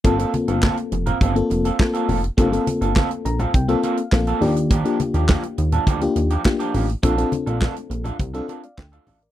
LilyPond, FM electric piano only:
\new Staff \with { instrumentName = "FM electric piano" } { \time 4/4 \key g \minor \tempo 4 = 103 << { r1 | r4. bes''8 g''8 f''8 f''8 d''8 | r1 | r2 r8 <bes' d''>16 <d'' f''>16 r16 <f'' a''>16 <d'' f''>16 <bes' d''>16 | } \\ { <bes c' f' a'>16 <bes c' f' a'>4. r8 <bes c' f' a'>8 r16 <bes c' f' a'>8. r16 | <bes c' f' a'>16 <bes c' f' a'>4. r8 <bes c' f' a'>8 r16 <bes c' f' a'>8 <bes d' f' g'>8 | r16 <bes d' f' g'>4. r8 <bes d' f' g'>8 r16 <bes d' f' g'>8. r16 | <c' d' f' a'>16 <c' d' f' a'>4. r8 <c' d' f' a'>8 r4 r16 | } >> }